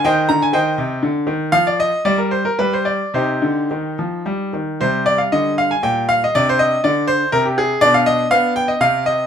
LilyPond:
<<
  \new Staff \with { instrumentName = "Grand piano" } { \time 3/4 \key c \minor \tempo 4 = 117 << { <c'' ees'' g''>8 bes''16 aes''16 <c'' ees'' g''>4 r4 | f''16 d''16 ees''8 d''16 bes'16 c''16 bes'16 b'16 c''16 d''8 | <ees' g' c''>2~ <ees' g' c''>8 r8 | c''8 d''16 f''16 ees''8 f''16 aes''16 g''8 f''16 ees''16 |
d''16 c''16 ees''8 d''8 c''8 bes'16 g'16 aes'8 | d''16 f''16 ees''8 f''8 g''16 ees''16 f''8 ees''8 | } \\ { r2. | r2. | r2. | g2. |
d'2. | d'2 c'4 | } >> }
  \new Staff \with { instrumentName = "Grand piano" } { \clef bass \time 3/4 \key c \minor ees8 d8 ees8 c8 d8 ees8 | f4 g4 g4 | c8 d8 ees8 f8 g8 ees8 | c4 d4 bes,4 |
c4 d4 c4 | b,4 b4 c4 | }
>>